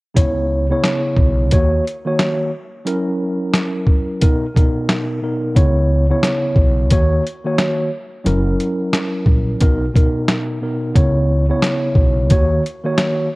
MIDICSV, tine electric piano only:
0, 0, Header, 1, 2, 480
1, 0, Start_track
1, 0, Tempo, 674157
1, 120, Time_signature, 4, 2, 24, 8
1, 9510, End_track
2, 0, Start_track
2, 0, Title_t, "Tine electric piano"
2, 0, Program_c, 0, 4
2, 106, Note_on_c, 0, 49, 95
2, 111, Note_on_c, 0, 59, 81
2, 116, Note_on_c, 0, 64, 86
2, 122, Note_on_c, 0, 73, 99
2, 465, Note_off_c, 0, 49, 0
2, 467, Note_off_c, 0, 59, 0
2, 470, Note_off_c, 0, 64, 0
2, 473, Note_off_c, 0, 73, 0
2, 497, Note_on_c, 0, 49, 92
2, 503, Note_on_c, 0, 59, 85
2, 508, Note_on_c, 0, 64, 87
2, 513, Note_on_c, 0, 73, 102
2, 1075, Note_off_c, 0, 49, 0
2, 1075, Note_on_c, 0, 51, 93
2, 1077, Note_off_c, 0, 59, 0
2, 1080, Note_off_c, 0, 64, 0
2, 1081, Note_on_c, 0, 58, 85
2, 1082, Note_off_c, 0, 73, 0
2, 1086, Note_on_c, 0, 66, 80
2, 1091, Note_on_c, 0, 73, 104
2, 1302, Note_off_c, 0, 51, 0
2, 1305, Note_off_c, 0, 58, 0
2, 1308, Note_off_c, 0, 66, 0
2, 1310, Note_off_c, 0, 73, 0
2, 1462, Note_on_c, 0, 51, 93
2, 1467, Note_on_c, 0, 58, 82
2, 1472, Note_on_c, 0, 66, 85
2, 1477, Note_on_c, 0, 73, 105
2, 1775, Note_off_c, 0, 51, 0
2, 1777, Note_off_c, 0, 58, 0
2, 1780, Note_off_c, 0, 66, 0
2, 1782, Note_off_c, 0, 73, 0
2, 2030, Note_on_c, 0, 54, 92
2, 2035, Note_on_c, 0, 61, 84
2, 2041, Note_on_c, 0, 64, 83
2, 2046, Note_on_c, 0, 70, 107
2, 2992, Note_on_c, 0, 47, 90
2, 2995, Note_off_c, 0, 54, 0
2, 2997, Note_off_c, 0, 61, 0
2, 2997, Note_on_c, 0, 59, 87
2, 2999, Note_off_c, 0, 70, 0
2, 3000, Note_off_c, 0, 64, 0
2, 3002, Note_on_c, 0, 63, 89
2, 3007, Note_on_c, 0, 70, 98
2, 3160, Note_off_c, 0, 47, 0
2, 3163, Note_off_c, 0, 59, 0
2, 3166, Note_off_c, 0, 63, 0
2, 3168, Note_off_c, 0, 70, 0
2, 3236, Note_on_c, 0, 47, 98
2, 3241, Note_on_c, 0, 59, 77
2, 3247, Note_on_c, 0, 63, 83
2, 3252, Note_on_c, 0, 70, 96
2, 3688, Note_off_c, 0, 47, 0
2, 3691, Note_off_c, 0, 59, 0
2, 3693, Note_off_c, 0, 63, 0
2, 3696, Note_off_c, 0, 70, 0
2, 3714, Note_on_c, 0, 47, 77
2, 3719, Note_on_c, 0, 59, 67
2, 3724, Note_on_c, 0, 63, 67
2, 3729, Note_on_c, 0, 70, 80
2, 3942, Note_off_c, 0, 47, 0
2, 3944, Note_off_c, 0, 59, 0
2, 3946, Note_on_c, 0, 49, 92
2, 3947, Note_off_c, 0, 63, 0
2, 3949, Note_off_c, 0, 70, 0
2, 3951, Note_on_c, 0, 59, 82
2, 3957, Note_on_c, 0, 64, 87
2, 3961, Note_on_c, 0, 73, 103
2, 4305, Note_off_c, 0, 49, 0
2, 4308, Note_off_c, 0, 59, 0
2, 4310, Note_off_c, 0, 64, 0
2, 4313, Note_off_c, 0, 73, 0
2, 4337, Note_on_c, 0, 49, 94
2, 4343, Note_on_c, 0, 59, 90
2, 4348, Note_on_c, 0, 64, 84
2, 4353, Note_on_c, 0, 73, 100
2, 4915, Note_off_c, 0, 49, 0
2, 4916, Note_on_c, 0, 51, 92
2, 4918, Note_off_c, 0, 59, 0
2, 4920, Note_off_c, 0, 64, 0
2, 4921, Note_on_c, 0, 58, 87
2, 4923, Note_off_c, 0, 73, 0
2, 4926, Note_on_c, 0, 66, 78
2, 4932, Note_on_c, 0, 73, 108
2, 5143, Note_off_c, 0, 51, 0
2, 5145, Note_off_c, 0, 58, 0
2, 5148, Note_off_c, 0, 66, 0
2, 5151, Note_off_c, 0, 73, 0
2, 5302, Note_on_c, 0, 51, 92
2, 5307, Note_on_c, 0, 58, 84
2, 5312, Note_on_c, 0, 66, 84
2, 5318, Note_on_c, 0, 73, 105
2, 5615, Note_off_c, 0, 51, 0
2, 5617, Note_off_c, 0, 58, 0
2, 5620, Note_off_c, 0, 66, 0
2, 5622, Note_off_c, 0, 73, 0
2, 5869, Note_on_c, 0, 54, 97
2, 5874, Note_on_c, 0, 61, 86
2, 5879, Note_on_c, 0, 64, 84
2, 5885, Note_on_c, 0, 70, 103
2, 6832, Note_on_c, 0, 47, 89
2, 6834, Note_off_c, 0, 54, 0
2, 6837, Note_off_c, 0, 61, 0
2, 6837, Note_on_c, 0, 59, 86
2, 6838, Note_off_c, 0, 70, 0
2, 6839, Note_off_c, 0, 64, 0
2, 6842, Note_on_c, 0, 63, 88
2, 6847, Note_on_c, 0, 70, 95
2, 7000, Note_off_c, 0, 47, 0
2, 7003, Note_off_c, 0, 59, 0
2, 7006, Note_off_c, 0, 63, 0
2, 7008, Note_off_c, 0, 70, 0
2, 7076, Note_on_c, 0, 47, 97
2, 7082, Note_on_c, 0, 59, 77
2, 7086, Note_on_c, 0, 63, 82
2, 7092, Note_on_c, 0, 70, 95
2, 7528, Note_off_c, 0, 47, 0
2, 7531, Note_off_c, 0, 59, 0
2, 7533, Note_off_c, 0, 63, 0
2, 7536, Note_off_c, 0, 70, 0
2, 7554, Note_on_c, 0, 47, 74
2, 7559, Note_on_c, 0, 59, 67
2, 7564, Note_on_c, 0, 63, 65
2, 7569, Note_on_c, 0, 70, 78
2, 7782, Note_off_c, 0, 47, 0
2, 7785, Note_off_c, 0, 59, 0
2, 7787, Note_off_c, 0, 63, 0
2, 7787, Note_on_c, 0, 49, 92
2, 7790, Note_off_c, 0, 70, 0
2, 7792, Note_on_c, 0, 59, 83
2, 7798, Note_on_c, 0, 64, 88
2, 7803, Note_on_c, 0, 73, 101
2, 8146, Note_off_c, 0, 49, 0
2, 8148, Note_off_c, 0, 59, 0
2, 8151, Note_off_c, 0, 64, 0
2, 8153, Note_off_c, 0, 73, 0
2, 8179, Note_on_c, 0, 49, 93
2, 8185, Note_on_c, 0, 59, 88
2, 8190, Note_on_c, 0, 64, 87
2, 8195, Note_on_c, 0, 73, 98
2, 8755, Note_off_c, 0, 49, 0
2, 8756, Note_on_c, 0, 51, 94
2, 8758, Note_off_c, 0, 59, 0
2, 8761, Note_off_c, 0, 64, 0
2, 8762, Note_on_c, 0, 58, 86
2, 8763, Note_off_c, 0, 73, 0
2, 8766, Note_on_c, 0, 66, 78
2, 8772, Note_on_c, 0, 73, 100
2, 8983, Note_off_c, 0, 51, 0
2, 8986, Note_off_c, 0, 58, 0
2, 8988, Note_off_c, 0, 66, 0
2, 8991, Note_off_c, 0, 73, 0
2, 9142, Note_on_c, 0, 51, 96
2, 9148, Note_on_c, 0, 58, 85
2, 9153, Note_on_c, 0, 66, 83
2, 9158, Note_on_c, 0, 73, 108
2, 9455, Note_off_c, 0, 51, 0
2, 9458, Note_off_c, 0, 58, 0
2, 9460, Note_off_c, 0, 66, 0
2, 9463, Note_off_c, 0, 73, 0
2, 9510, End_track
0, 0, End_of_file